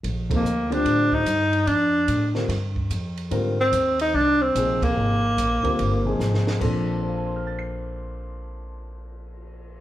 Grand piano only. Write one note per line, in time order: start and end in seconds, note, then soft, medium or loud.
0.29 0.42 C3 soft
0.29 0.43 F3 soft
0.29 0.43 A#3 soft
0.29 0.43 D#4 soft
0.29 0.43 A4 medium
0.70 1.23 D3 medium
0.70 1.23 G3 medium
0.70 1.23 C4 medium
0.70 1.23 F4 medium
0.70 1.24 C5 medium
2.35 2.48 D3 medium
2.35 2.48 G3 soft
2.35 2.48 C4 medium
2.35 2.49 F4 soft
2.35 2.49 A#4 medium
3.31 3.56 D3 medium
3.31 3.56 G3 medium
3.31 3.56 C4 medium
3.31 3.56 F4 medium
3.31 3.56 A#4 medium
4.55 5.18 C3 soft
4.55 5.18 F3 soft
4.55 5.18 A#3 soft
4.55 5.18 D#4 soft
4.55 5.18 G#4 medium
5.63 6.02 D3 medium
5.63 6.02 G3 medium
5.63 6.02 C4 medium
5.63 6.03 F4 medium
5.63 6.03 A#4 medium
6.05 6.57 C3 medium
6.05 6.58 F3 medium
6.05 6.58 A#3 medium
6.05 6.58 D#4 soft
6.05 6.58 G#4 medium
6.59 9.80 A#2 medium
6.59 9.80 F3 medium
6.59 9.80 C4 medium
6.59 9.80 D4 medium
6.59 9.80 A4 medium
7.01 9.80 C5 soft
7.09 9.80 F5 soft
7.17 9.80 A5 soft
7.26 9.80 C6 soft
7.36 9.80 F6 soft
7.47 9.80 A6 soft
7.59 9.80 C7 soft